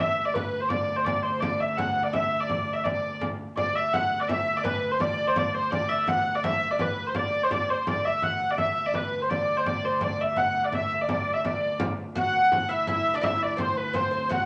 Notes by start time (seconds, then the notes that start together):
Already playing: D2
0.00 E5
0.25 D5
0.34 B4, frame drum
0.60 C5
0.69 D5, frame drum
0.96 C5
1.05 D5, frame drum
1.23 C5
1.40 D5, frame drum
1.60 E5
1.77 F#5, frame drum
2.03 D5
2.13 E5, frame drum
2.40 D5
2.49 D5, frame drum
2.67 frame drum
2.73 E5
2.84 D5, frame drum
3.03 frame drum
3.21 frame drum
3.57 D2 D5, frame drum
3.76 E5
3.93 F#5, frame drum
4.20 D5
4.28 E5, frame drum
4.56 D5
4.64 B4, frame drum
4.91 C5
5.00 D5, frame drum
5.27 C5
5.36 D5, frame drum
5.54 C5
5.71 D5, frame drum
5.89 E5
6.08 F#5, frame drum
6.35 D5
6.44 E5, frame drum
6.71 D5
6.79 B4, frame drum
6.97 frame drum
7.07 C5
7.15 D5, frame drum
7.43 C5
7.51 D5, frame drum
7.70 C5
7.87 D2 D5, frame drum
8.05 E5
8.22 F#5, frame drum
8.50 D5
8.58 E5, frame drum
8.86 D5
8.94 B4, frame drum
9.21 C5
9.30 D5, frame drum
9.57 C5
9.65 D5, frame drum
9.85 C5
10.01 D5, frame drum
10.21 E5
10.36 F#5, frame drum
10.64 D5
10.72 E5, frame drum
11.01 D5
11.09 D5, frame drum
11.33 E5
11.45 D5, frame drum
11.80 frame drum
11.98 frame drum
12.15 D2 F#4 F#5, frame drum
12.52 F#5, frame drum
12.69 E4 E5
12.87 E4 E5, frame drum
13.14 D4 D5
13.22 E4 E5, frame drum
13.42 D5
13.57 C4 C5, frame drum
13.77 B4
13.93 C4 C5, frame drum
14.11 C4 C5
14.29 F#4 F#5, frame drum